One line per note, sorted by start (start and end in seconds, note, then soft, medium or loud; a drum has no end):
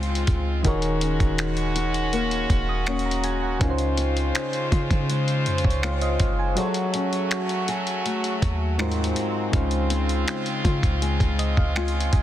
0.00 0.26 C#2 medium
0.00 0.60 C#3 medium
0.00 0.62 C#3 medium
0.00 0.65 C#3 medium
0.00 0.60 G#3 medium
0.00 1.79 G#3 medium
0.00 3.57 G#3 medium
0.00 0.61 C4 medium
0.00 0.72 C4 medium
0.00 0.61 D#4 medium
0.00 0.62 F4 medium
0.00 0.73 F4 medium
0.00 0.62 C5 medium
0.00 closed hi-hat soft
0.15 closed hi-hat medium
0.27 0.63 C#2 loud
0.27 kick loud
0.27 closed hi-hat medium
0.63 1.18 D#1 loud
0.63 2.82 D#3 medium
0.63 3.61 D#3 medium
0.63 3.58 C#4 medium
0.63 2.82 D#4 medium
0.63 2.83 F#4 medium
0.63 3.58 F#4 medium
0.63 2.83 G#4 medium
0.63 kick loud
0.63 closed hi-hat medium
0.67 2.84 A#4 medium
0.67 2.84 C#5 medium
0.82 closed hi-hat medium
1.01 2.87 C#4 medium
1.01 closed hi-hat medium
1.20 2.46 D#1 loud
1.20 kick medium
1.20 closed hi-hat soft
1.38 finger snap loud
1.38 closed hi-hat medium
1.57 closed hi-hat soft
1.76 2.87 F#4 medium
1.76 closed hi-hat medium
1.94 closed hi-hat soft
2.13 2.86 A#3 medium
2.13 closed hi-hat medium
2.31 closed hi-hat soft
2.50 3.57 D#1 loud
2.50 kick medium
2.50 closed hi-hat medium
2.69 2.86 D#6 medium
2.86 3.68 A#3 medium
2.86 3.97 C#4 medium
2.86 3.69 F#4 medium
2.86 3.05 C#6 medium
2.86 finger snap loud
2.86 closed hi-hat soft
2.99 closed hi-hat soft
3.06 3.23 A#5 medium
3.11 closed hi-hat medium
3.24 3.42 G#5 medium
3.24 closed hi-hat medium
3.43 3.78 F#5 medium
3.59 4.32 C#2 loud
3.59 6.52 C#3 medium
3.59 6.57 C#3 medium
3.59 6.54 C#3 medium
3.59 6.54 G#3 medium
3.59 6.53 C#4 medium
3.59 6.53 D#4 medium
3.59 6.54 F4 medium
3.59 6.54 C5 medium
3.59 kick loud
3.59 closed hi-hat medium
3.64 3.69 A#4 medium
3.70 5.45 C5 medium
3.78 closed hi-hat soft
3.98 5.82 C4 medium
3.98 closed hi-hat medium
4.17 closed hi-hat soft
4.35 finger snap loud
4.35 closed hi-hat medium
4.53 closed hi-hat soft
4.72 4.90 C#3 medium
4.72 5.83 F4 medium
4.72 kick medium
4.72 closed hi-hat medium
4.91 5.48 C#3 loud
4.91 kick medium
4.91 closed hi-hat soft
5.09 5.83 G#3 medium
5.09 closed hi-hat medium
5.28 closed hi-hat soft
5.46 5.64 F2 medium
5.46 5.64 C5 medium
5.46 closed hi-hat medium
5.58 closed hi-hat medium
5.64 6.18 C#2 loud
5.64 5.82 C#5 medium
5.64 kick medium
5.70 closed hi-hat medium
5.83 8.05 G#3 medium
5.83 6.65 C4 medium
5.83 6.65 F4 medium
5.83 6.01 F5 medium
5.83 finger snap loud
5.83 closed hi-hat medium
6.01 6.19 D#5 medium
6.01 closed hi-hat medium
6.20 6.56 F#1 loud
6.20 6.38 F5 medium
6.20 kick loud
6.20 closed hi-hat medium
6.39 6.74 G#5 medium
6.55 8.74 F#3 medium
6.55 8.77 F#3 medium
6.55 8.87 F#3 medium
6.55 8.77 A3 medium
6.55 8.77 C#4 medium
6.55 8.75 F#4 medium
6.55 8.77 F#4 medium
6.55 8.76 G#4 medium
6.55 8.76 A4 medium
6.55 closed hi-hat medium
6.60 6.65 C5 medium
6.67 8.80 C#5 medium
6.74 closed hi-hat medium
6.94 8.87 C#4 medium
6.94 closed hi-hat medium
7.13 closed hi-hat soft
7.31 finger snap loud
7.31 closed hi-hat medium
7.49 closed hi-hat soft
7.68 10.64 G#4 medium
7.68 closed hi-hat medium
7.87 closed hi-hat soft
8.05 8.87 A3 medium
8.05 closed hi-hat medium
8.24 closed hi-hat soft
8.42 9.14 D#2 loud
8.42 kick medium
8.42 closed hi-hat medium
8.78 9.61 G#2 medium
8.78 9.53 F#3 medium
8.78 9.51 G#3 medium
8.78 12.23 G#3 medium
8.78 12.23 C4 medium
8.78 9.53 D#4 medium
8.78 9.54 F4 medium
8.78 9.54 F#4 medium
8.78 9.54 A#4 medium
8.78 9.54 C5 medium
8.78 finger snap loud
8.78 closed hi-hat soft
8.91 closed hi-hat soft
9.04 closed hi-hat medium
9.16 closed hi-hat medium
9.51 10.25 C#2 loud
9.51 12.23 C#3 medium
9.51 12.23 G#3 medium
9.51 12.23 D#4 medium
9.51 12.23 F4 medium
9.51 kick loud
9.51 closed hi-hat medium
9.56 12.23 C5 medium
9.71 closed hi-hat soft
9.90 11.75 C4 medium
9.90 closed hi-hat medium
10.09 closed hi-hat soft
10.28 finger snap loud
10.28 closed hi-hat medium
10.46 closed hi-hat soft
10.65 10.83 C#3 loud
10.65 11.76 F4 medium
10.65 kick medium
10.65 closed hi-hat medium
10.83 11.19 C#2 loud
10.83 kick medium
10.83 closed hi-hat medium
11.02 11.76 G#3 medium
11.02 closed hi-hat medium
11.20 11.56 C#2 loud
11.20 kick medium
11.20 closed hi-hat soft
11.39 11.56 D#5 medium
11.39 closed hi-hat medium
11.57 12.11 C#2 loud
11.57 11.75 F5 medium
11.57 kick medium
11.76 12.23 G#3 medium
11.76 12.23 C4 medium
11.76 12.23 F4 medium
11.76 12.10 G#5 medium
11.76 finger snap loud
11.76 closed hi-hat soft
11.88 closed hi-hat soft
12.00 closed hi-hat medium
12.13 12.23 C#2 loud
12.13 12.23 G#5 medium
12.13 kick loud
12.13 closed hi-hat medium